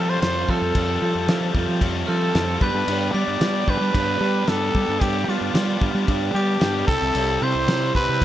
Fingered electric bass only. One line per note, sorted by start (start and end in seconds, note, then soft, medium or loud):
0.00 0.16 F3 medium
0.22 0.43 F2 loud
0.49 0.59 F3 medium
0.61 0.72 F2 loud
0.76 0.96 F2 medium
1.02 1.12 F3 medium
1.15 1.25 F2 medium
1.28 1.49 F3 medium
1.55 1.65 F2 medium
1.68 1.79 F3 medium
1.82 2.03 F2 loud
2.08 2.29 F3 medium
2.35 2.56 F2 medium
2.61 2.72 G2 medium
2.74 2.85 G2 loud
2.88 3.09 G2 medium
3.14 3.25 G3 medium
3.28 3.38 G2 medium
3.41 3.62 G3 medium
3.68 3.79 G2 medium
3.81 3.92 G3 medium
3.94 4.16 G2 loud
4.21 4.42 G3 loud
4.48 4.69 G2 loud
4.75 4.85 G3 medium
4.88 4.99 G2 loud
5.02 5.23 G2 loud
5.28 5.39 G3 loud
5.41 5.52 G2 medium
5.54 5.76 G3 loud
5.82 5.92 G2 medium
5.95 6.05 G3 medium
6.09 6.30 G2 loud
6.34 6.56 G3 medium
6.62 6.83 G2 loud
6.88 6.99 C2 medium
7.02 7.12 C2 loud
7.15 7.36 C2 loud
7.42 7.52 C3 medium
7.55 7.66 C2 medium
7.68 7.89 C3 loud
7.95 8.06 C2 medium
8.09 8.19 C3 medium